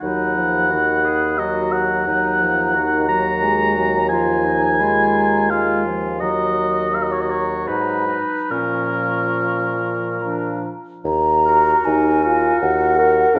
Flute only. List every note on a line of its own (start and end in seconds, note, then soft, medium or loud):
0.02 1.41 B5 medium
1.39 2.07 A#5 medium
2.08 2.71 A#5 medium
2.75 3.43 A#5 medium
3.42 4.10 G#5 medium
4.11 4.82 A#5 medium
4.80 5.18 B5 medium
5.17 5.52 A#5 medium
5.51 6.23 G#5 medium
6.22 6.62 A#5 medium
6.92 7.28 A#5 medium
7.29 7.67 A#5 medium
7.67 8.19 B5 medium
8.50 10.23 C#6 medium
10.21 10.70 A#5 soft
11.05 11.87 A#5 loud
11.85 12.61 G#5 loud
12.61 13.37 F#5 loud
13.36 13.39 F5 loud